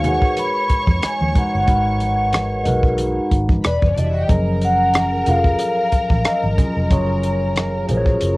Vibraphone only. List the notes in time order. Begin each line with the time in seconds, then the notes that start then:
0.00 G#5
0.07 F#5
0.39 B5
1.06 G#5
1.39 F#5
1.56 F#5
3.66 D5
3.98 D#5
4.65 F#5
5.29 F5
6.21 F5
6.27 D#5
6.92 C#5